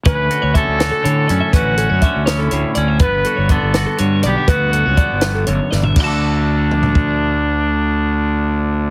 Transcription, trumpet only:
X:1
M:6/8
L:1/8
Q:3/8=81
K:D
V:1 name="Trumpet"
B2 A4 | F3 E2 z | B2 A2 z G | F4 z2 |
D6- | D6 |]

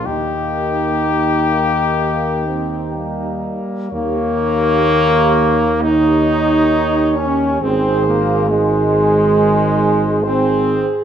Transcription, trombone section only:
X:1
M:4/4
L:1/8
Q:1/4=65
K:Eb
V:1 name="Trombone section"
B,2 B,3 C [G,B,]2 | B,4 E3 _D | C B, A,4 C2 |]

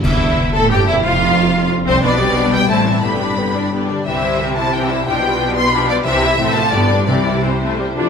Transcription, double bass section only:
X:1
M:3/4
L:1/8
Q:1/4=178
K:C
V:1 name="Double bass section" clef=bass
E,,,3 A,,, G,,, E,,, | F,,,4 z C,, | B,,,4 A,,,2 | G,,,4- G,,, z |
C,,6 | B,,,6 | C,,2 A,,,2 G,,,2 | C,,4- C,, z |]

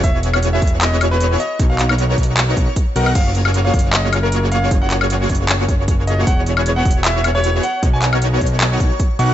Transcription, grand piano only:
X:1
M:4/4
L:1/16
Q:"Swing 16ths" 1/4=154
K:F#
V:1 name="Grand piano"
=e z4 e2 z d2 z B2 z d2 | z e z12 A z | e z4 e2 z d2 z A2 z e2 | z f z12 d z |
f z4 f2 z =e2 z c2 z f2 | z g z12 c' z |]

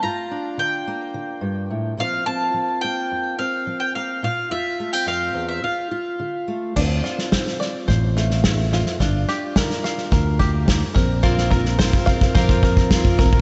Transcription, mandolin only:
X:1
M:4/4
L:1/16
Q:1/4=107
K:Dm
V:1 name="Mandolin"
b4 g8 z2 f2 | a4 g4 f3 g f2 f2 | e3 g f3 e f6 z2 | z16 |
z16 | z16 |]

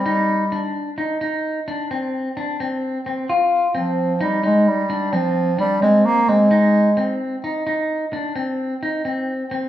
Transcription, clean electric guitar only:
X:1
M:7/4
L:1/8
Q:1/4=130
K:Fdor
V:1 name="Clean electric guitar"
E2 D2 E E2 D C2 D C2 C | F2 C2 E E2 D C2 D C2 C | E2 C2 E E2 D C2 E C2 C |]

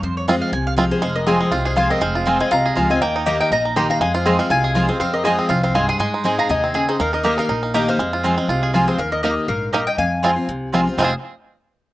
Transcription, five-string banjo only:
X:1
M:4/4
L:1/8
Q:"Swing" 1/4=241
K:Fm
V:1 name="Five-string banjo"
z2 [A,CF] z3 [A,CF] z | A,2 C A, F A F C | A, F C A, F A F C | B, E B, E E E E E |
A, F C A, F A F C | C2 A, C F C A, A | A, E A, A E C A E | E E B, E E E B, E |
A, F C A, F A F C | z2 [B,E] z3 [B,E] z | z2 [A,CF] z3 [A,CF] z | [A,CFA] z6 z |]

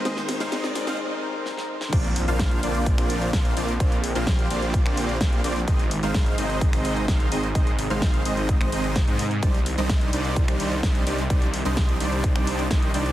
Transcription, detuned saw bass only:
X:1
M:4/4
L:1/16
Q:1/4=128
K:Bbmix
V:1 name="Detuned saw bass" clef=bass
z16 | B,,,3 B,,,3 B,,,3 B,,,3 B,,,2 B,,,2 | B,,,3 B,,,3 B,,,3 B,,,3 B,,,2 B,,,2 | A,,,3 A,,,3 A,,,3 A,,,3 A,,,2 A,,,2 |
A,,,3 A,,,3 A,,,3 A,,, A,,,3 A,,3 | C,,3 C,,3 C,,3 C,,3 C,,2 C,,2 | C,,3 C,,3 C,,3 C,,3 C,,2 C,,2 |]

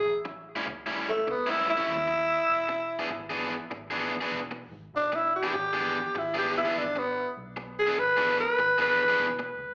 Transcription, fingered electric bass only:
X:1
M:4/4
L:1/8
Q:"Swing" 1/4=98
K:Emix
V:1 name="Fingered electric bass" clef=bass
A,,,2 C,,2 C,,2 ^D,,2 | E,,,2 G,,,2 G,,,2 E,,, G,,, | E,,,2 G,,,2 G,,,2 G,,,2 | B,,,2 G,,,2 G,,,2 E,,, C,, |]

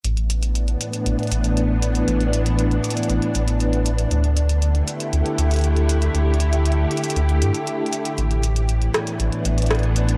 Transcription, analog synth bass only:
X:1
M:4/4
L:1/8
Q:1/4=118
K:D
V:1 name="Analog synth bass" clef=bass
A,,,3 z A,,, A,,,3 | A,,,3 z A,,, A,,,3 | D,,3 z D,, D,,3 | D,,3 z D,, G,, z2 |
A,,,3 z A,,, A,,,3 |]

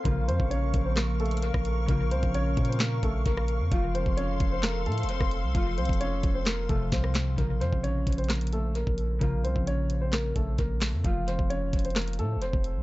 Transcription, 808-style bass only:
X:1
M:4/4
L:1/16
Q:1/4=131
K:Bbm
V:1 name="808-style bass" clef=bass
B,,,2 F,, B,,,3 B,,,6- B,,, B,,,3 | B,,,2 C,, B,,,3 B,,4 B,,,2 B,,,3 F,, | F,,,3 F,,,3 F,,,4 =A,,3/2 F,,,3/2 F,,,2 C,, | F,,,2 C,, F,,,3 F,,,4 F,,,2 C,,4 |
B,,,2 F,, B,,,3 B,,,6- B,,, B,,,3 | B,,,2 C,, B,,,6- B,,, B,,,2 B,,,3 F,, | F,,,3 F,,,3 F,,,4 =A,,3/2 F,,,3/2 F,,,2 C,, |]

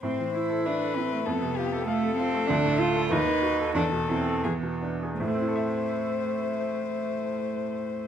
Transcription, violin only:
X:1
M:2/4
L:1/8
Q:1/4=91
K:Am
V:1 name="Violin"
c2 B2 | A G A2- | A2 B2 | A2 ^G z |
c4- | c4 |]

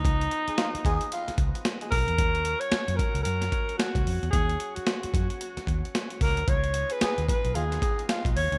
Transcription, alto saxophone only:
X:1
M:4/4
L:1/16
Q:"Swing 16ths" 1/4=112
K:Ebdor
V:1 name="Alto saxophone"
E8- E2 z4 B2- | B3 d3 B2 B4 G4 | A3 G8- G z2 B2 | d3 _c3 c2 A4 z2 d2 |]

